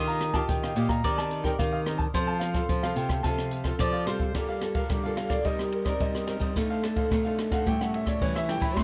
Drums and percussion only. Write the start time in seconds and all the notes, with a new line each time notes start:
0.08 closed hi-hat
0.21 cross-stick, closed hi-hat
0.34 kick, cross-stick, closed hi-hat
0.49 kick, closed hi-hat
0.64 cross-stick, closed hi-hat
0.76 closed hi-hat
0.89 kick, cross-stick
1.04 kick, closed hi-hat
1.18 cross-stick
1.31 closed hi-hat
1.44 kick, cross-stick
1.59 kick, cross-stick, closed hi-hat
1.86 cross-stick, closed hi-hat
1.99 kick, closed hi-hat
2.14 kick, cross-stick, closed hi-hat
2.41 cross-stick, closed hi-hat
2.54 kick, cross-stick, closed hi-hat
2.69 kick, closed hi-hat
2.83 cross-stick
2.96 closed hi-hat
3.09 kick, cross-stick, closed hi-hat
3.24 kick, closed hi-hat
3.38 cross-stick, closed hi-hat
3.51 closed hi-hat
3.64 kick, cross-stick, closed hi-hat
3.79 kick, cross-stick, closed hi-hat
3.94 closed hi-hat
4.07 cross-stick, closed hi-hat
4.20 kick
4.35 kick, cross-stick, ride
4.61 cross-stick, ride
4.75 kick, ride
4.90 kick, cross-stick, ride
5.17 cross-stick, ride
5.30 kick, cross-stick, ride
5.45 kick, ride
5.59 cross-stick
5.72 ride
5.85 kick, cross-stick, ride
6.00 kick, ride
6.15 cross-stick
6.27 cross-stick, ride
6.41 kick, ride
6.56 kick, cross-stick, ride
6.83 cross-stick, ride
6.96 kick, ride
7.11 kick, cross-stick, ride
7.39 cross-stick, ride
7.51 kick, cross-stick, ride
7.67 kick, ride
7.81 cross-stick
7.94 ride
8.07 kick, cross-stick, ride
8.22 kick, ride
8.36 cross-stick
8.49 cross-stick, ride
8.62 kick, ride
8.77 kick, cross-stick, ride